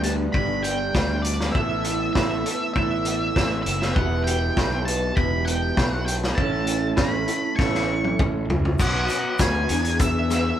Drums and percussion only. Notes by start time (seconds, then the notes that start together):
0.03 closed hi-hat
0.34 kick
0.64 closed hi-hat
0.95 kick, snare
1.24 closed hi-hat
1.40 snare
1.55 kick
1.84 closed hi-hat
2.15 kick, snare
2.46 closed hi-hat
2.76 kick
3.05 closed hi-hat
3.36 kick, snare
3.66 closed hi-hat
3.82 snare
3.96 kick
4.27 closed hi-hat
4.57 kick, snare
4.88 closed hi-hat
5.17 kick
5.47 closed hi-hat
5.77 kick, snare
6.08 closed hi-hat
6.23 snare
6.38 kick
6.67 closed hi-hat
6.97 kick, snare
7.28 closed hi-hat
7.59 kick, snare
7.75 snare
8.04 high tom
8.19 kick, mid tom
8.50 floor tom
8.65 floor tom
8.79 kick, crash, shaker
9.09 closed hi-hat, shaker
9.39 kick, snare, closed hi-hat, shaker
9.69 closed hi-hat, shaker
9.84 closed hi-hat
9.99 kick, closed hi-hat, shaker
10.31 snare, closed hi-hat, shaker